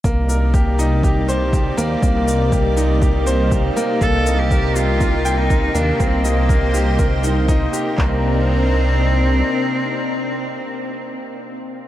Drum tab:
SH |xxxxxxxx|xxxxxxxx|xxxxxxxx|xxxxxxxx|
CP |--------|--------|--------|--------|
BD |o-o-o-o-|o-o-o-o-|o-o-o-o-|o-o-o-o-|

SH |--------|--------|
CP |x-------|--------|
BD |o-------|--------|